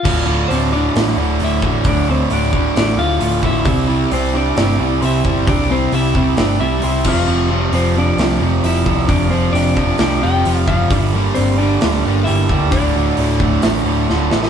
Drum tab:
CC |x---------------|----------------|----------------|--------------x-|
HH |----o---o---o---|o---o---o---o---|o---o---o---o---|o---o---o---o---|
SD |--------oo------|--------oo------|--------oo------|--------oo------|
BD |o-------------o-|o-----o-------o-|o-------------o-|o-----o-------o-|

CC |----------------|----------------|----------------|----------------|
HH |----o---o---o---|o---o---o---o---|o---o---o---o---|o---o---o-------|
SD |--------oo------|--------oo------|--------oo------|--------oo--o-oo|
BD |--------------o-|o-----o-------o-|o-------------o-|o-----o---------|